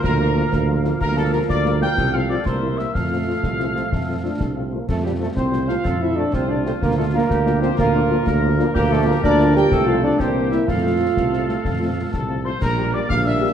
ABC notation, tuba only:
X:1
M:6/8
L:1/8
Q:3/8=124
K:F
V:1 name="Tuba" clef=bass
D,,3 D,,3 | D,,3 D,,3 | C,,3 C,,3 | F,,3 C,,3 |
F,,3 C,,3 | F,,3 C,,3 | F,,3 C,,3 | D,,3 D,,3 |
D,,3 D,,3 | D,,3 D,,3 | C,,3 C,,3 | F,,3 C,,3 |
F,,3 C,,3 | B,,,3 B,,,3 |]